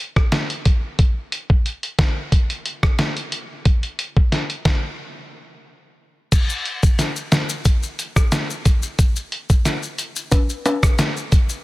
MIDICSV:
0, 0, Header, 1, 2, 480
1, 0, Start_track
1, 0, Tempo, 666667
1, 711, Time_signature, 4, 2, 24, 8
1, 8380, End_track
2, 0, Start_track
2, 0, Title_t, "Drums"
2, 117, Note_on_c, 9, 36, 94
2, 119, Note_on_c, 9, 37, 92
2, 189, Note_off_c, 9, 36, 0
2, 191, Note_off_c, 9, 37, 0
2, 230, Note_on_c, 9, 42, 74
2, 232, Note_on_c, 9, 38, 126
2, 302, Note_off_c, 9, 42, 0
2, 304, Note_off_c, 9, 38, 0
2, 360, Note_on_c, 9, 42, 58
2, 432, Note_off_c, 9, 42, 0
2, 471, Note_on_c, 9, 42, 74
2, 473, Note_on_c, 9, 36, 87
2, 543, Note_off_c, 9, 42, 0
2, 545, Note_off_c, 9, 36, 0
2, 711, Note_on_c, 9, 42, 65
2, 712, Note_on_c, 9, 36, 108
2, 783, Note_off_c, 9, 42, 0
2, 784, Note_off_c, 9, 36, 0
2, 952, Note_on_c, 9, 42, 67
2, 1024, Note_off_c, 9, 42, 0
2, 1079, Note_on_c, 9, 36, 107
2, 1151, Note_off_c, 9, 36, 0
2, 1194, Note_on_c, 9, 42, 57
2, 1266, Note_off_c, 9, 42, 0
2, 1319, Note_on_c, 9, 42, 49
2, 1391, Note_off_c, 9, 42, 0
2, 1429, Note_on_c, 9, 42, 66
2, 1430, Note_on_c, 9, 36, 98
2, 1432, Note_on_c, 9, 38, 107
2, 1501, Note_off_c, 9, 42, 0
2, 1502, Note_off_c, 9, 36, 0
2, 1504, Note_off_c, 9, 38, 0
2, 1671, Note_on_c, 9, 36, 96
2, 1672, Note_on_c, 9, 42, 81
2, 1743, Note_off_c, 9, 36, 0
2, 1744, Note_off_c, 9, 42, 0
2, 1799, Note_on_c, 9, 42, 52
2, 1871, Note_off_c, 9, 42, 0
2, 1912, Note_on_c, 9, 42, 64
2, 1984, Note_off_c, 9, 42, 0
2, 2038, Note_on_c, 9, 36, 95
2, 2039, Note_on_c, 9, 37, 95
2, 2110, Note_off_c, 9, 36, 0
2, 2111, Note_off_c, 9, 37, 0
2, 2150, Note_on_c, 9, 42, 71
2, 2152, Note_on_c, 9, 38, 118
2, 2222, Note_off_c, 9, 42, 0
2, 2224, Note_off_c, 9, 38, 0
2, 2280, Note_on_c, 9, 42, 59
2, 2352, Note_off_c, 9, 42, 0
2, 2391, Note_on_c, 9, 42, 74
2, 2463, Note_off_c, 9, 42, 0
2, 2631, Note_on_c, 9, 42, 63
2, 2632, Note_on_c, 9, 36, 111
2, 2703, Note_off_c, 9, 42, 0
2, 2704, Note_off_c, 9, 36, 0
2, 2758, Note_on_c, 9, 42, 40
2, 2830, Note_off_c, 9, 42, 0
2, 2872, Note_on_c, 9, 42, 70
2, 2944, Note_off_c, 9, 42, 0
2, 2999, Note_on_c, 9, 36, 108
2, 3071, Note_off_c, 9, 36, 0
2, 3112, Note_on_c, 9, 38, 63
2, 3113, Note_on_c, 9, 42, 58
2, 3184, Note_off_c, 9, 38, 0
2, 3185, Note_off_c, 9, 42, 0
2, 3238, Note_on_c, 9, 42, 49
2, 3310, Note_off_c, 9, 42, 0
2, 3349, Note_on_c, 9, 42, 64
2, 3350, Note_on_c, 9, 36, 94
2, 3352, Note_on_c, 9, 38, 108
2, 3421, Note_off_c, 9, 42, 0
2, 3422, Note_off_c, 9, 36, 0
2, 3424, Note_off_c, 9, 38, 0
2, 4551, Note_on_c, 9, 42, 66
2, 4551, Note_on_c, 9, 49, 99
2, 4552, Note_on_c, 9, 36, 115
2, 4554, Note_on_c, 9, 82, 86
2, 4623, Note_off_c, 9, 42, 0
2, 4623, Note_off_c, 9, 49, 0
2, 4624, Note_off_c, 9, 36, 0
2, 4626, Note_off_c, 9, 82, 0
2, 4677, Note_on_c, 9, 82, 61
2, 4749, Note_off_c, 9, 82, 0
2, 4791, Note_on_c, 9, 42, 52
2, 4863, Note_off_c, 9, 42, 0
2, 4918, Note_on_c, 9, 82, 67
2, 4919, Note_on_c, 9, 36, 115
2, 4990, Note_off_c, 9, 82, 0
2, 4991, Note_off_c, 9, 36, 0
2, 5031, Note_on_c, 9, 38, 66
2, 5031, Note_on_c, 9, 82, 70
2, 5033, Note_on_c, 9, 42, 58
2, 5103, Note_off_c, 9, 38, 0
2, 5103, Note_off_c, 9, 82, 0
2, 5105, Note_off_c, 9, 42, 0
2, 5156, Note_on_c, 9, 82, 55
2, 5228, Note_off_c, 9, 82, 0
2, 5269, Note_on_c, 9, 42, 49
2, 5271, Note_on_c, 9, 38, 114
2, 5271, Note_on_c, 9, 82, 58
2, 5341, Note_off_c, 9, 42, 0
2, 5343, Note_off_c, 9, 38, 0
2, 5343, Note_off_c, 9, 82, 0
2, 5396, Note_on_c, 9, 82, 82
2, 5468, Note_off_c, 9, 82, 0
2, 5508, Note_on_c, 9, 82, 77
2, 5511, Note_on_c, 9, 36, 101
2, 5512, Note_on_c, 9, 42, 86
2, 5580, Note_off_c, 9, 82, 0
2, 5583, Note_off_c, 9, 36, 0
2, 5584, Note_off_c, 9, 42, 0
2, 5637, Note_on_c, 9, 82, 51
2, 5709, Note_off_c, 9, 82, 0
2, 5752, Note_on_c, 9, 42, 47
2, 5753, Note_on_c, 9, 82, 58
2, 5824, Note_off_c, 9, 42, 0
2, 5825, Note_off_c, 9, 82, 0
2, 5877, Note_on_c, 9, 36, 99
2, 5878, Note_on_c, 9, 82, 78
2, 5879, Note_on_c, 9, 37, 101
2, 5949, Note_off_c, 9, 36, 0
2, 5950, Note_off_c, 9, 82, 0
2, 5951, Note_off_c, 9, 37, 0
2, 5990, Note_on_c, 9, 42, 80
2, 5990, Note_on_c, 9, 82, 78
2, 5991, Note_on_c, 9, 38, 127
2, 6062, Note_off_c, 9, 42, 0
2, 6062, Note_off_c, 9, 82, 0
2, 6063, Note_off_c, 9, 38, 0
2, 6122, Note_on_c, 9, 82, 60
2, 6194, Note_off_c, 9, 82, 0
2, 6231, Note_on_c, 9, 42, 56
2, 6231, Note_on_c, 9, 82, 54
2, 6232, Note_on_c, 9, 36, 96
2, 6303, Note_off_c, 9, 42, 0
2, 6303, Note_off_c, 9, 82, 0
2, 6304, Note_off_c, 9, 36, 0
2, 6355, Note_on_c, 9, 82, 72
2, 6427, Note_off_c, 9, 82, 0
2, 6470, Note_on_c, 9, 42, 68
2, 6471, Note_on_c, 9, 36, 118
2, 6474, Note_on_c, 9, 82, 88
2, 6542, Note_off_c, 9, 42, 0
2, 6543, Note_off_c, 9, 36, 0
2, 6546, Note_off_c, 9, 82, 0
2, 6597, Note_on_c, 9, 82, 59
2, 6669, Note_off_c, 9, 82, 0
2, 6711, Note_on_c, 9, 42, 52
2, 6783, Note_off_c, 9, 42, 0
2, 6838, Note_on_c, 9, 82, 68
2, 6839, Note_on_c, 9, 36, 109
2, 6910, Note_off_c, 9, 82, 0
2, 6911, Note_off_c, 9, 36, 0
2, 6951, Note_on_c, 9, 38, 67
2, 6951, Note_on_c, 9, 82, 73
2, 6953, Note_on_c, 9, 42, 60
2, 7023, Note_off_c, 9, 38, 0
2, 7023, Note_off_c, 9, 82, 0
2, 7025, Note_off_c, 9, 42, 0
2, 7076, Note_on_c, 9, 82, 54
2, 7148, Note_off_c, 9, 82, 0
2, 7189, Note_on_c, 9, 42, 52
2, 7190, Note_on_c, 9, 82, 59
2, 7261, Note_off_c, 9, 42, 0
2, 7262, Note_off_c, 9, 82, 0
2, 7315, Note_on_c, 9, 82, 84
2, 7387, Note_off_c, 9, 82, 0
2, 7427, Note_on_c, 9, 65, 54
2, 7427, Note_on_c, 9, 82, 76
2, 7431, Note_on_c, 9, 36, 101
2, 7432, Note_on_c, 9, 42, 82
2, 7499, Note_off_c, 9, 65, 0
2, 7499, Note_off_c, 9, 82, 0
2, 7503, Note_off_c, 9, 36, 0
2, 7504, Note_off_c, 9, 42, 0
2, 7557, Note_on_c, 9, 82, 52
2, 7629, Note_off_c, 9, 82, 0
2, 7672, Note_on_c, 9, 42, 47
2, 7672, Note_on_c, 9, 65, 81
2, 7672, Note_on_c, 9, 82, 56
2, 7744, Note_off_c, 9, 42, 0
2, 7744, Note_off_c, 9, 65, 0
2, 7744, Note_off_c, 9, 82, 0
2, 7797, Note_on_c, 9, 36, 101
2, 7798, Note_on_c, 9, 82, 77
2, 7799, Note_on_c, 9, 37, 106
2, 7869, Note_off_c, 9, 36, 0
2, 7870, Note_off_c, 9, 82, 0
2, 7871, Note_off_c, 9, 37, 0
2, 7909, Note_on_c, 9, 82, 76
2, 7910, Note_on_c, 9, 42, 78
2, 7911, Note_on_c, 9, 38, 127
2, 7981, Note_off_c, 9, 82, 0
2, 7982, Note_off_c, 9, 42, 0
2, 7983, Note_off_c, 9, 38, 0
2, 8041, Note_on_c, 9, 82, 58
2, 8113, Note_off_c, 9, 82, 0
2, 8150, Note_on_c, 9, 82, 52
2, 8151, Note_on_c, 9, 42, 57
2, 8152, Note_on_c, 9, 36, 96
2, 8222, Note_off_c, 9, 82, 0
2, 8223, Note_off_c, 9, 42, 0
2, 8224, Note_off_c, 9, 36, 0
2, 8275, Note_on_c, 9, 82, 74
2, 8347, Note_off_c, 9, 82, 0
2, 8380, End_track
0, 0, End_of_file